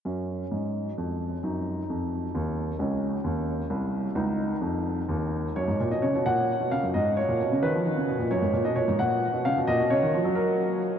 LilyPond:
<<
  \new Staff \with { instrumentName = "Grand piano" } { \time 6/8 \key fis \major \tempo 4. = 88 cis'2. | dis'2. | cis'2. | dis'2. |
cis''8. dis''16 cis''8 fis''4 eis''8 | dis''8 cis''4 b'4. | cis''8. dis''16 cis''8 fis''4 eis''8 | dis''8 cis''4 ais'4. | }
  \new Staff \with { instrumentName = "Grand piano" } { \clef bass \time 6/8 \key fis \major fis,4 gis,4 eis,4 | fis,4 eis,4 dis,4 | cis,4 dis,4 bis,,4 | cis,4 eis,4 dis,4 |
fis,16 gis,16 ais,16 b,16 cis16 b,16 ais,8. b,16 cis16 fis,16 | gis,8. ais,16 b,16 cis16 dis16 eis16 dis16 cis16 b,16 ais,16 | fis,16 gis,16 ais,16 b,16 ais,16 gis,16 ais,8. b,16 cis16 b,16 | ais,16 b,16 cis16 dis16 eis16 fis4.~ fis16 | }
>>